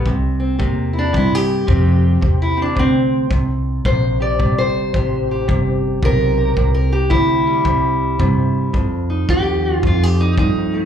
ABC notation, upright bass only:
X:1
M:4/4
L:1/8
Q:"Swing" 1/4=110
K:Cmix
V:1 name="Upright bass" clef=bass
C,,2 E,,2 G,,2 F,,2 | E,,2 D,,2 C,,2 B,,,2 | G,,,2 A,,,2 G,,,2 =B,,,2 | C,,2 D,,2 C,,2 G,,2 |
F,,2 _E,,2 F,,2 G,,2 |]